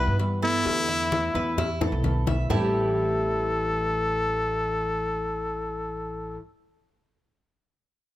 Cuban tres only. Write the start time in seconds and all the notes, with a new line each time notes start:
Already playing: B4
0.42 A4
0.89 E4
1.35 B4
1.58 E4
1.81 A4
2.27 E5
2.50 A3 E4 G4